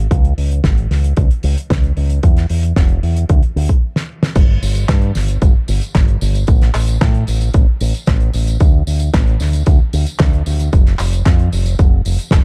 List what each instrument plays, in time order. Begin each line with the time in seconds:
0.11 fingered electric bass C#2, kick, closed hi-hat
0.25 closed hi-hat
0.38 fingered electric bass C#2, open hi-hat
0.51 closed hi-hat
0.64 fingered electric bass G#1, kick, snare, closed hi-hat
0.78 closed hi-hat
0.91 fingered electric bass C#2, snare, open hi-hat
1.04 closed hi-hat
1.17 fingered electric bass C#2, kick, closed hi-hat
1.31 closed hi-hat
1.43 fingered electric bass C#2, open hi-hat
1.58 closed hi-hat
1.70 fingered electric bass C#2, kick, snare, closed hi-hat
1.83 closed hi-hat
1.97 fingered electric bass C#2, open hi-hat
2.10 closed hi-hat
2.23 fingered electric bass E2, kick, closed hi-hat
2.37 snare, closed hi-hat
2.49 fingered electric bass E2, open hi-hat
2.63 closed hi-hat
2.76 fingered electric bass E1, kick, snare, closed hi-hat
2.89 closed hi-hat
3.03 fingered electric bass E2, open hi-hat
3.16 closed hi-hat
3.29 fingered electric bass D2, kick, closed hi-hat
3.43 closed hi-hat
3.56 fingered electric bass D2, open hi-hat
3.69 kick, closed hi-hat
3.96 snare
4.23 snare
4.35 fingered electric bass G1, kick, closed hi-hat, tambourine, crash
4.62 fingered electric bass G1, open hi-hat, tambourine
4.75 closed hi-hat, tambourine
4.88 fingered electric bass G2, kick, snare, clap, closed hi-hat, tambourine
5.02 closed hi-hat
5.15 fingered electric bass G1, snare, open hi-hat, tambourine
5.28 closed hi-hat, tambourine
5.42 fingered electric bass G1, kick, closed hi-hat, tambourine
5.68 fingered electric bass G1, open hi-hat, tambourine
5.81 closed hi-hat, tambourine
5.95 fingered electric bass G1, kick, snare, clap, closed hi-hat, tambourine
6.08 closed hi-hat
6.21 fingered electric bass G1, open hi-hat, tambourine
6.35 closed hi-hat, tambourine
6.47 fingered electric bass A1, kick, closed hi-hat, tambourine
6.61 snare, closed hi-hat
6.74 fingered electric bass A1, clap, open hi-hat, tambourine
6.87 closed hi-hat, tambourine
7.01 fingered electric bass A2, kick, snare, clap, closed hi-hat
7.15 closed hi-hat
7.27 fingered electric bass A1, open hi-hat, tambourine
7.41 closed hi-hat, tambourine
7.54 fingered electric bass A1, kick, closed hi-hat, tambourine
7.81 fingered electric bass A1, open hi-hat, tambourine
7.94 closed hi-hat, tambourine
8.06 fingered electric bass A1, kick, snare, clap, closed hi-hat, tambourine
8.20 closed hi-hat
8.34 fingered electric bass A1, open hi-hat, tambourine
8.47 closed hi-hat, tambourine
8.60 fingered electric bass D2, kick, closed hi-hat, tambourine
8.87 fingered electric bass D2, open hi-hat, tambourine
9.00 closed hi-hat, tambourine
9.14 fingered electric bass A1, kick, snare, clap, closed hi-hat
9.27 closed hi-hat
9.40 fingered electric bass D2, snare, open hi-hat, tambourine
9.53 closed hi-hat, tambourine
9.66 fingered electric bass D2, kick, closed hi-hat, tambourine
9.93 fingered electric bass D2, open hi-hat, tambourine
10.06 closed hi-hat, tambourine
10.19 fingered electric bass D2, kick, snare, clap, closed hi-hat, tambourine
10.33 closed hi-hat
10.46 fingered electric bass D2, open hi-hat, tambourine
10.59 closed hi-hat, tambourine
10.72 fingered electric bass F1, kick, closed hi-hat, tambourine
10.86 snare, closed hi-hat
10.99 fingered electric bass F1, clap, open hi-hat, tambourine
11.13 closed hi-hat, tambourine
11.26 fingered electric bass F2, kick, snare, clap, closed hi-hat
11.39 closed hi-hat
11.52 fingered electric bass F1, open hi-hat, tambourine
11.66 closed hi-hat, tambourine
11.79 fingered electric bass F1, kick, closed hi-hat
12.05 fingered electric bass F1, open hi-hat, tambourine
12.19 closed hi-hat, tambourine
12.31 fingered electric bass F1, kick, snare, clap, closed hi-hat